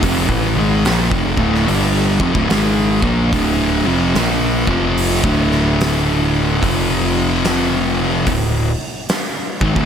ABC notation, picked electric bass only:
X:1
M:4/4
L:1/16
Q:"Swing" 1/4=73
K:Dm
V:1 name="Picked electric bass" clef=bass
F,,, A,,, ^G,,,2 B,,, F,,, D,,,2 =G,,,2 z D,,, ^G,,,2 B,,,2 | D,,,2 F,,,2 B,,,2 F,,,3 D,,,6- D,,, | F,,,8 D,,,2 z4 ^G,,, D,,, |]